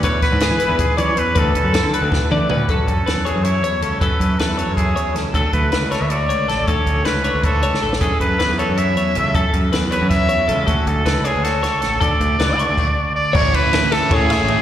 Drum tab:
CC |--------------|--------------|--------------|--------------|
RD |--------------|--------------|--------------|--------------|
HH |x-x-x-x-x-x-x-|x-x-x-x-------|x-x-x-x-x-x-x-|x-x-x-x-x-x-x-|
SD |--o-o---------|----o---o-----|----o---------|----o-------o-|
T2 |--------------|----------o---|--------------|--------------|
FT |--------------|------------o-|--------------|--------------|
BD |o-o-----o-----|o-o-----o-----|o-o-----------|o-o-----o-----|

CC |--------------|--------------|--------------|--------------|
RD |--------------|--------------|--------------|--------------|
HH |x-x-x-x-x-x-x-|x-x-x-x-x-x---|x-x-x-x-x-x-x-|x-x-x-x-x-x-x-|
SD |----o-o-----o-|----o------o-o|----o---------|----o---o-----|
T2 |--------------|--------------|--------------|--------------|
FT |--------------|--------------|--------------|--------------|
BD |o-o-----------|o-o-----o-----|o-o-----------|o-o-----o-----|

CC |--------------|--------x-----|x-------------|
RD |--------------|--------------|--x-x-x-x-x-x-|
HH |x-x-x-x-x-x-x-|x-x-x-x-------|--------------|
SD |----o---o-o-o-|----o---------|----o-o---o---|
T2 |--------------|--------------|--------------|
FT |--------------|--------------|--------------|
BD |o-o-----------|o-o-----o-----|o-o-----o-----|